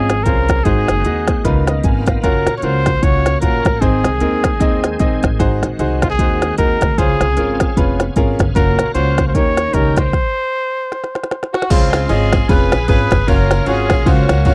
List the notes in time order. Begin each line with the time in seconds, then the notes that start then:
Already playing: G#1 F3 C4 C#4 F4 G#4 D#5
0.09 snare, closed hi-hat
0.23 C2 C#4 F4 G#4 A#4 C5, kick, closed hi-hat
0.49 kick, snare, closed hi-hat
0.64 G#1 G#2 D#3 G#3 D#4 F#4 G#4 C5, kick, closed hi-hat
0.88 F#1, snare, closed hi-hat
1.05 D#2 D#4 F#4 G#4 D#5, closed hi-hat
1.28 kick, snare, closed hi-hat
1.44 C#2 C#3 A#3 B3 D#4 F4 A#4 B4, kick, closed hi-hat
1.67 D#5, snare, closed hi-hat
1.84 G#1 G#5, kick, closed hi-hat
2.06 F5, kick, snare, closed hi-hat
2.23 F#1 C#4 F4 F#4 A#4, kick, closed hi-hat
2.47 A#1, snare, closed hi-hat
2.58 C#5
2.62 C#2 C#4 F4 F#4 A#4 C5, closed hi-hat
2.86 kick, snare, closed hi-hat
3.02 C#2 C#4 F4 F#4 C#5, kick, closed hi-hat
3.26 snare, closed hi-hat
3.41 A#1 C#4 F4 F#4 A#4, kick, closed hi-hat
3.65 A1, kick, snare, closed hi-hat
3.81 G#1 G#2 D#3 G#3 C4 D#4 G#4 C5, kick, closed hi-hat
4.04 C2, snare, closed hi-hat
4.20 D#2 C4 D#4 G#4 A#4, closed hi-hat
4.44 kick, snare, closed hi-hat
4.60 D#2 C4 D#4 G#4 D#5, kick, closed hi-hat
4.84 snare, closed hi-hat
4.99 A#1 C4 D#4 G#4 D#5, kick, closed hi-hat
5.23 A1, kick, snare, closed hi-hat
5.39 G#1 G#2 D#4 F#4 G#4 C5, kick, closed hi-hat
5.62 A#1, snare, closed hi-hat
5.79 C2 D#4 F#4 G#4 C5, closed hi-hat
6.02 F4, kick, snare, closed hi-hat
6.10 G#4
6.19 D#2 D#4 F#4 G#4 C5, kick, closed hi-hat
6.42 snare, closed hi-hat
6.58 D#2 D#4 F#4 G#4 A#4, kick, closed hi-hat
6.81 D2, kick, snare, closed hi-hat
6.98 C#2 C#3 C4 C#4 F4 G#4 C5, kick, closed hi-hat
7.21 C2, snare, closed hi-hat
7.37 G#1 C#4 F4 G#4 A#4, closed hi-hat
7.60 kick, snare, closed hi-hat
7.76 F1 B3 C#4 F4 G#4 B4, kick, closed hi-hat
8.00 snare, closed hi-hat
8.16 G#1 C#4 F4 G#4 A#4, kick, closed hi-hat
8.39 G1, kick, snare, closed hi-hat
8.55 F#1 A#3 C#4 F4 F#4 A#4, kick, closed hi-hat
8.79 A#1, snare, closed hi-hat
8.95 C#2 C#4 F4 F#4 C5 C#5, closed hi-hat
9.18 kick, snare, closed hi-hat
9.28 C5
9.34 D#2 D#3 C#4 D#4 G4 A#4 C#5, kick, closed hi-hat
9.57 snare, closed hi-hat
9.73 C#2 C#4 D#4 G4 A#4 C#5, kick, closed hi-hat
9.96 C5, kick, snare, closed hi-hat
10.13 kick, snare
10.92 snare
11.04 snare
11.15 snare
11.23 snare
11.31 snare
11.43 snare
11.54 F#4, snare
11.62 snare
11.70 C#2 C#3 G#3 C4 C#4 F4 G#4 C5 F5 C6, kick, crash, ride
11.93 snare, ride
12.09 G#1 C4 C#4 F4 G#4 D#5, ride
12.33 kick, snare, ride
12.49 F1 C#4 F4 G#4 B4 B5, kick, ride
12.72 A#1, snare, ride
12.88 G#1 C#4 F4 G#4 B4, kick, ride
13.11 G1, kick, snare, ride
13.27 F#1 C#4 F4 F#4 A#4 C#5, kick, ride
13.51 snare, ride
13.66 G#1 C#4 F4 F#4 G#4 C#5, ride
13.90 A#1, kick, snare, ride
14.06 C#2 A#3 C#4 F4 F#4 C5, kick, ride
14.29 C#2, snare, ride
14.45 G#1 C#4 F4 F#4 C#5, kick, ride